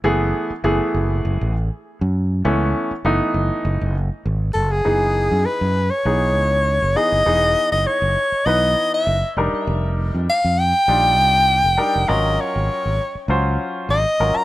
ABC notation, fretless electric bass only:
X:1
M:4/4
L:1/16
Q:"Swing 16ths" 1/4=100
K:F#dor
V:1 name="Fretless electric bass" clef=bass
F,,,2 z2 F,,, z F,,,2 F,,, A,,,2 z2 F,,3 | C,,2 z2 F,,, z F,,, z F,,, F,,,2 z G,,,2 F,,,2 | F,,,3 F,, z F,,2 z B,,,2 C,,3 F,,, z F,,, | E,,,2 z F,,, z F,,, z2 B,,,2 z2 F,,, z =F,,, z |
=F,,,3 =F,, z F,,2 z _B,,,2 =C,,3 F,,, z F,,, | G,,,2 z G,,, z G,,, z2 C,,2 z2 G,,, z G,,, z |]